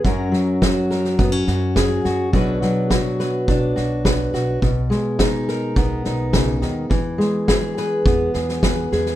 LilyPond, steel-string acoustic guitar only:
\new Staff \with { instrumentName = "Steel-string acoustic guitar" } { \time 4/4 \key fis \mixolydian \tempo 4 = 105 << { <fis cis' fis' ais'>4 fis'8 ais'8 b16 cis'16 fis'8 gis'8 fis'8 | <fis d' fis' b'>4 fis'8 b'8 d'8 fis'8 b'8 fis'8 | r4 dis'8 ais'8 b8 dis'4. | r4 gis'8 b'8 b8 gis'8 b'8 gis'8 | } \\ { fis,8 fis2.~ fis8 | b,8 fis2.~ fis8 | b,8 gis2~ gis8 cis8 dis8 | e8 gis2.~ gis8 | } >> }